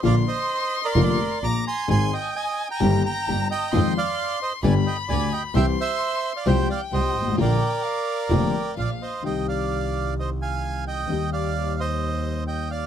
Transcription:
X:1
M:4/4
L:1/16
Q:1/4=130
K:Bbmix
V:1 name="Violin"
c'12 b4 | a8 b8 | c'8 =b8 | c'8 g8 |
g4 f4 g4 f4 | [K:Cm] z16 | z16 |]
V:2 name="Bandoneon"
[df]2 [ce]4- [ce] [Bd]4- [Bd] [bd']2 [ac']2 | [ac']2 [eg]2 [ea]3 [gb]3 [gb]4 [eg]2- | [eg]2 [df]4 [ce]2 [da]2 [eg]2 [da]2 [eg]2 | [=eg]2 [ce]4- [ce] [df] [cg]2 [df]2 [c_e]4 |
[Bd]12 [df]2 [ce]2 | [K:Cm] [eg]2 [df]6 [ce]2 [fa]4 [eg]2- | [eg]2 [df]4 [ce]6 [eg]2 [df]2 |]
V:3 name="String section"
[DFB]2 z6 [DFB]2 z2 [DFB]2 z2 | [CEA]2 z6 [B,EG]2 z2 [B,EG]2 z2 | [A,EF]2 z6 [=B,DG]2 z2 [B,DG]2 z2 | [C=EG]2 z6 [A,FG]2 z2 [A,FG]2 z2 |
[B,DF]2 z6 [B,DF]2 z2 [B,DF]2 z2 | [K:Cm] z16 | z16 |]
V:4 name="Grand piano" clef=bass
[B,,,B,,D,F,B,F]2 z6 [F,,,F,,D,F,B,F]2 z2 [B,,,B,,]2 z2 | [A,,,A,,E,A,CA]2 z6 [G,,,G,,E,G,B,G]2 z2 [G,,,G,,]2 z2 | [F,,E,F,A,CF]2 z6 [G,,,G,,D,G,=B,G]2 z2 [D,,D,]2 z2 | [C,,C,=E,G,CG]2 z6 [C,,C,F,A,CG]2 z2 [C,,C,]2 z/2 G,,,/2 A,,,/2 =A,,,/2 |
[B,,,B,,D,F,B,F]2 z6 [F,,,F,,D,F,B,F]2 z2 [B,,,B,,]2 z2 | [K:Cm] [C,,C,E,G,CE]16 | [E,,E,G,B,G]16 |]
V:5 name="Double bass" clef=bass
B,,,2 z6 F,,,2 z2 B,,,2 z2 | A,,,2 z6 G,,,2 z2 G,,,2 z2 | F,,2 z6 G,,,2 z2 D,,2 z2 | C,,2 z6 C,,2 z2 C,,2 A,,,2 |
B,,,2 z6 F,,,2 z2 B,,,2 z2 | [K:Cm] C,,16 | E,,16 |]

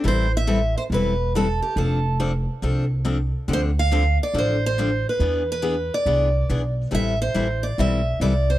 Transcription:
X:1
M:4/4
L:1/8
Q:"Swing" 1/4=140
K:Am
V:1 name="Steel-string acoustic guitar"
c e2 c B2 A G | A2 z6 | c f2 d c c2 B- | B B2 d4 z |
e c2 d e2 d c |]
V:2 name="Steel-string acoustic guitar"
[E,G,CEA] z [E,G,CEA] z [E,G,CEA] z [E,G,CEA] z | [F,CDA] z [F,CDA] z [F,CDA] z [F,CDA] z | [D,F,CDA] z [D,F,CDA] z [D,F,CDA] z [D,F,CDA] z | [E,B,D^G] z [E,B,DG] z [E,B,DG] z [E,B,DG] z |
[E,G,CEA] z [E,G,CEA] z [E,G,CEA] z [E,G,CEA] z |]
V:3 name="Upright bass" clef=bass
A,,,4 E,,,4 | F,,,4 C,,4 | D,,4 A,,,4 | E,,4 C,,2 B,,,2 |
A,,,2 A,,,2 B,,,2 C,,2 |]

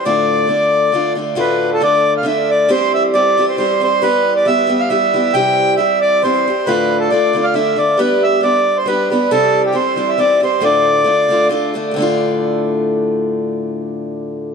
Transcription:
X:1
M:3/4
L:1/16
Q:"Swing" 1/4=136
K:Ddor
V:1 name="Accordion"
d8- d2 z2 | B3 A d3 f e2 d2 | c2 e2 d3 c c2 c2 | B3 d e3 f e4 |
g4 e2 d2 c4 | B3 A d3 f e2 d2 | B2 e2 d3 c B2 B2 | A3 G c3 e d2 c2 |
d8 z4 | z12 | z12 |]
V:2 name="Steel-string acoustic guitar"
[D,,A,,D,A,DF]4 [D,A,DF]4 [D,A,DF]2 [D,A,DF]2 | [D,,A,,D,A,DF]4 [D,A,DF]4 [D,A,DF]4 | [E,G,CG]4 [E,G,CG]2 [E,G,CG]2 [E,G,CG]2 [E,G,CG]2 | [E,G,B,G]4 [E,G,B,G]2 [E,G,B,G]2 [E,G,B,G]2 [E,G,B,G]2 |
[C,E,G,CG]4 [E,G,CG]4 [E,G,CG]2 [E,G,CG]2 | [D,,A,,D,A,DF]4 [D,A,DF]2 [D,A,DF]2 [D,A,DF]2 [D,A,DF]2 | [G,B,DG]4 [G,B,DG]4 [G,B,DG]2 [G,B,DG]2 | [C,E,G,CG]4 [E,G,CG]2 [E,G,CG]2 [E,G,CG]2 [E,G,CG]2 |
[D,,A,,D,A,DF]4 [D,A,DF]2 [D,A,DF]2 [D,A,DF]2 [D,A,DF]2 | [D,,A,,D,A,DF]12- | [D,,A,,D,A,DF]12 |]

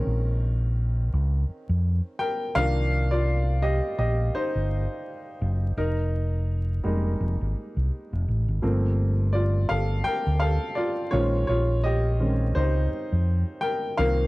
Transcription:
X:1
M:4/4
L:1/16
Q:"Swing 16ths" 1/4=84
K:Bbmix
V:1 name="Upright piano"
B2 z8 z2 [Bg]2 [Bf]2- | [Bf] [Fd]3 [Ge]2 [Ge]2 [Ec]8 | [EB]12 z4 | z4 [Fd]2 [=Af]2 [Bg]2 [Af]2 [Fd]2 [F_d]2 |
[F_d]2 [Ge]4 [Ec]6 [Bg]2 [Bf]2 |]
V:2 name="Upright piano"
[E,A,C_D]4 z8 z2 [E,F,B,=D]2- | [E,F,B,D]4 z12 | z6 [G,A,B,E]8- [G,A,B,E]2 | [F,=A,B,C]2 z12 [E,_A,_Dc]2 |
z4 [E,A,C_D]2 z8 [E,F,B,C]2 |]
V:3 name="Fingered electric bass" clef=bass
B,,,6 _D,,2 z F,,2 z3 C,,2- | C,,6 B,,,2 z G,,,2 z3 ^F,,,2 | F,,,6 F,,,2 F,,, A,,, z C,, z F,,, =A,,, _A,,, | G,,,6 G,,,2 z D,,2 z3 B,,,2 |
B,,,6 _D,,2 z F,,2 z3 C,,2 |]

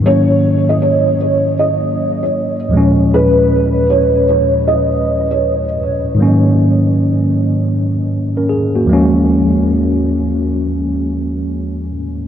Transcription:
X:1
M:4/4
L:1/16
Q:"Swing 16ths" 1/4=78
K:D#m
V:1 name="Felt piano"
c3 d c2 c2 d3 c2 z3 | B4 c2 c2 d3 c2 z3 | z16 | z16 |]
V:2 name="Tine electric piano"
z16 | z16 | z8 z3 [CA] G [A,F]2 z | z16 |]
V:3 name="Tine electric piano" clef=bass
[G,,D,F,A,C]12- [G,,D,F,A,C]2 [D,,A,,E,G,C]2- | [D,,A,,E,G,C]12- [D,,A,,E,G,C]2 z2 | [G,,D,F,A,C]12- [G,,D,F,A,C]2 [D,,E,G,A,C]2- | [D,,E,G,A,C]12- [D,,E,G,A,C]2 z2 |]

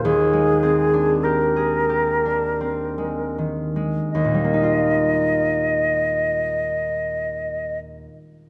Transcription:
X:1
M:3/4
L:1/16
Q:1/4=41
K:Eb
V:1 name="Flute"
A4 B6 z2 | e12 |]
V:2 name="Harp"
[E,,CGc] A, C D G A G D C A, E, A, | [E,,B,,G,B,EF]12 |]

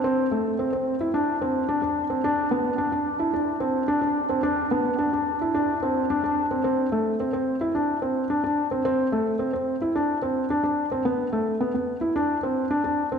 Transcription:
X:1
M:4/4
L:1/16
Q:1/4=109
K:Ddor
V:1 name="Felt piano"
C2 A,2 C C2 E D2 C2 D D2 C | D2 B,2 D D2 E D2 C2 D D2 C | D2 B,2 D D2 E D2 C2 D D2 C | C2 A,2 C C2 E D2 C2 D D2 C |
C2 A,2 C C2 E D2 C2 D D2 C | B,2 A,2 B, B,2 E D2 C2 D D2 C |]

